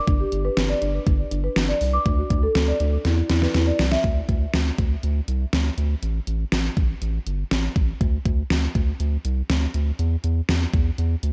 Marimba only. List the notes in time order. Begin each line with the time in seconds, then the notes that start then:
0.08 D4
0.20 G4
0.32 D4
0.45 B4
0.57 D4
0.69 D5
0.82 D4
1.07 D4
1.31 D4
1.44 B4
1.56 D4
1.69 D5
1.93 D6
2.06 D4
2.18 F#4
2.31 D4
2.43 A4
2.56 D4
2.68 D5
2.80 D4
3.05 E4
3.30 E4
3.42 B4
3.54 E4
3.67 D5
3.92 E5